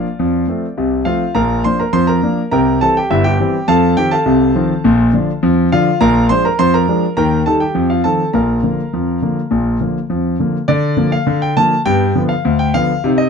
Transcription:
0.00 1.03 F4 medium
0.00 1.03 D5 medium
0.00 0.66 F5 medium
0.19 0.44 F2 medium
0.19 0.44 F3 medium
0.48 0.64 F3 soft
0.48 0.65 A3 soft
0.48 0.65 C4 soft
0.78 1.02 C2 medium
0.78 1.03 C3 medium
1.05 1.22 F3 soft
1.05 1.23 A3 soft
1.05 1.23 C4 soft
1.05 1.34 F4 medium
1.05 1.34 F5 medium
1.35 1.60 A#1 medium
1.35 1.60 A#2 medium
1.35 1.63 A#4 medium
1.35 1.63 F5 medium
1.35 1.63 A#5 medium
1.64 1.81 F3 soft
1.64 1.81 A#3 soft
1.64 1.81 D4 soft
1.64 1.79 C5 medium
1.64 1.80 C6 medium
1.80 1.94 A#4 medium
1.80 1.94 A#5 medium
1.93 2.18 F2 medium
1.93 2.19 F3 medium
1.93 2.08 C5 medium
1.93 2.08 C6 medium
2.07 2.50 A#4 medium
2.07 2.43 A#5 medium
2.23 2.39 F3 soft
2.23 2.39 A#3 soft
2.23 2.40 D4 soft
2.51 2.77 C2 medium
2.51 2.77 C3 medium
2.51 2.80 A#4 medium
2.51 2.80 G5 medium
2.51 2.80 A#5 medium
2.81 2.98 E3 soft
2.81 2.98 G3 soft
2.81 2.98 C4 soft
2.81 2.96 A4 medium
2.81 2.96 A5 medium
2.97 3.11 G4 medium
2.97 3.11 G5 medium
3.10 3.36 G1 medium
3.10 3.35 G2 medium
3.10 3.25 E4 medium
3.10 3.25 E5 medium
3.24 3.66 G4 medium
3.24 3.66 G5 medium
3.39 3.56 E3 soft
3.39 3.56 G3 medium
3.39 3.56 C4 medium
3.68 3.93 F2 medium
3.68 3.93 F3 medium
3.68 3.96 A4 medium
3.68 3.96 F5 medium
3.68 3.96 A5 loud
3.97 4.13 D#3 soft
3.97 4.14 F3 soft
3.97 4.14 C4 medium
3.97 4.12 G4 medium
3.97 4.12 G5 loud
4.11 5.39 A4 medium
4.11 5.39 F5 medium
4.11 5.39 A5 medium
4.26 4.51 C2 medium
4.26 4.51 C3 medium
4.55 4.72 D#3 medium
4.55 4.72 F3 medium
4.55 4.72 C4 medium
4.84 5.10 A#1 medium
4.84 5.10 A#2 medium
5.13 5.29 D3 soft
5.13 5.30 F3 soft
5.13 5.30 D4 medium
5.43 5.68 F2 medium
5.43 5.68 F3 medium
5.72 5.88 D3 medium
5.72 5.89 F3 medium
5.72 5.89 D4 medium
5.72 6.00 F4 medium
5.72 6.00 F5 loud
6.01 6.26 A#1 medium
6.01 6.26 A#2 medium
6.01 6.28 A#4 medium
6.01 6.28 F5 medium
6.01 6.24 A#5 loud
6.29 6.46 F3 soft
6.29 6.46 G#3 soft
6.29 6.47 D4 medium
6.29 6.44 C5 medium
6.29 6.44 C6 loud
6.45 6.59 A#4 medium
6.45 6.59 A#5 medium
6.59 6.84 F2 medium
6.59 6.84 F3 medium
6.59 6.73 C5 medium
6.59 6.74 C6 loud
6.74 7.15 A#4 medium
6.74 7.09 A#5 medium
6.88 7.04 F3 soft
6.88 7.04 G#3 medium
6.88 7.05 D4 medium
7.17 7.42 D#2 medium
7.17 7.42 D#3 medium
7.17 7.45 A#4 medium
7.17 7.45 G5 medium
7.17 7.40 A#5 medium
7.46 7.62 D#3 soft
7.46 7.63 G3 soft
7.46 7.63 D#4 soft
7.46 7.60 A4 medium
7.46 7.61 A5 medium
7.60 7.88 G4 medium
7.60 7.88 G5 medium
7.75 8.00 F2 medium
7.75 8.00 F3 medium
7.90 8.04 F4 soft
7.90 8.04 F5 medium
8.04 8.21 D#3 soft
8.04 8.21 F3 soft
8.04 8.21 C4 soft
8.04 8.32 A4 medium
8.04 8.28 A5 medium
8.33 8.59 A#1 medium
8.33 8.59 A#2 medium
8.33 10.06 A#4 medium
8.33 10.07 F5 soft
8.33 9.75 A#5 medium
8.63 8.79 D3 soft
8.63 8.79 F3 soft
8.63 8.80 A#3 soft
8.93 9.18 F2 medium
8.93 9.18 F3 medium
9.22 9.38 D3 soft
9.22 9.39 F3 soft
9.22 9.39 A#3 soft
9.51 9.76 A#1 medium
9.51 9.76 A#2 medium
9.81 9.97 D3 soft
9.81 9.97 F3 soft
9.81 9.98 A#3 soft
10.10 10.35 F2 medium
10.10 10.35 F3 medium
10.40 10.56 D3 soft
10.40 10.56 F3 soft
10.40 10.57 A#3 soft
10.68 10.94 D3 medium
10.68 11.10 D5 medium
10.97 11.13 D3 medium
10.97 11.14 F3 soft
10.97 11.14 A#3 medium
11.12 11.40 F5 medium
11.27 11.52 D3 medium
11.42 11.56 G5 medium
11.57 11.73 D3 medium
11.57 11.73 F3 soft
11.57 11.73 A#3 medium
11.57 11.80 A5 loud
11.86 12.10 G2 medium
11.86 12.03 B3 medium
11.86 12.21 G5 loud
12.15 12.31 D3 medium
12.15 12.31 F3 medium
12.15 12.32 B3 medium
12.29 12.57 F5 medium
12.45 12.69 D2 medium
12.59 12.73 G5 medium
12.74 12.90 D3 medium
12.74 12.90 F3 medium
12.74 12.91 B3 medium
12.74 13.09 F5 loud
13.04 13.28 C3 medium
13.04 13.21 D#4 medium
13.18 13.29 D#5 medium

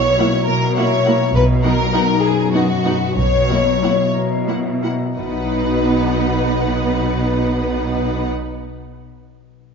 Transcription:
0.00 0.14 B1 medium
0.00 0.33 B2 soft
0.00 1.35 B2 soft
0.00 1.64 F#3 soft
0.00 0.18 E4 soft
0.00 0.45 C#5 medium
0.00 0.76 E5 soft
0.19 0.27 A#3 soft
0.19 0.27 E4 soft
0.19 1.38 E4 soft
0.19 0.27 F#5 soft
0.47 1.20 B2 medium
0.47 0.75 A#4 medium
0.47 1.06 A#4 soft
0.76 0.85 A#3 soft
0.76 0.85 E4 soft
0.76 1.33 C#5 medium
0.76 1.38 E5 soft
0.76 0.84 F#5 soft
1.06 1.14 A#3 soft
1.06 1.14 E4 soft
1.06 1.38 A#4 soft
1.06 1.14 F#5 soft
1.34 1.90 B1 medium
1.34 2.09 B2 medium
1.34 3.17 B2 medium
1.34 1.43 B4 medium
1.64 3.49 F#3 soft
1.64 1.73 B3 soft
1.64 1.73 D#4 soft
1.64 2.23 A#4 medium
1.64 1.72 F#5 soft
1.94 2.02 B3 soft
1.94 2.02 D#4 soft
1.94 3.21 D#4 soft
1.94 2.02 F#5 soft
2.23 3.02 F#2 medium
2.23 2.54 G#4 medium
2.23 2.85 B4 soft
2.53 2.63 B3 soft
2.53 2.63 D#4 soft
2.53 3.16 F#4 medium
2.53 3.21 D#5 soft
2.53 2.63 F#5 soft
2.85 2.93 B3 soft
2.85 2.93 D#4 soft
2.85 3.21 B4 soft
2.85 2.93 F#5 soft
3.17 3.77 B1 soft
3.17 3.98 B2 soft
3.17 5.17 B2 soft
3.17 4.13 C#5 medium
3.49 7.40 F#3 soft
3.49 3.58 A#3 soft
3.49 3.58 E4 soft
3.49 3.57 F#5 soft
3.82 3.90 A#3 soft
3.82 3.90 E4 soft
3.82 5.21 E4 soft
3.82 3.91 F#5 soft
4.14 5.00 B2 soft
4.14 4.82 A#4 soft
4.47 4.55 A#3 soft
4.47 4.56 E4 soft
4.47 5.21 E5 soft
4.47 4.57 F#5 soft
4.82 4.90 A#3 soft
4.82 4.90 E4 soft
4.82 5.21 A#4 soft
4.82 4.93 F#5 soft
5.16 8.28 B1 soft
5.16 8.28 B2 soft
5.16 9.09 B2 soft
5.16 8.26 B3 soft
5.16 8.26 D#4 soft
5.16 8.28 B4 soft
5.20 8.30 F#5 soft
5.26 8.36 B3 soft
5.33 8.43 D#4 soft
5.40 8.49 F#4 soft
5.47 8.56 D#5 soft

